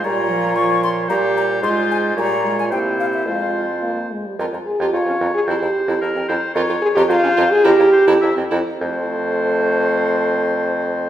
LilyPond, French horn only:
\new Staff \with { instrumentName = "French horn" } { \time 2/4 \key bes \dorian \tempo 4 = 109 g8 f8 f4 | g4 aes4 | g8 aes8 bes4 | aes4 bes8 aes16 g16 |
bes'8 aes'16 g'16 f'8. aes'16 | g'4. r8 | bes'8 aes'16 g'16 f'8. aes'16 | g'4. r8 |
a'2~ | a'2 | }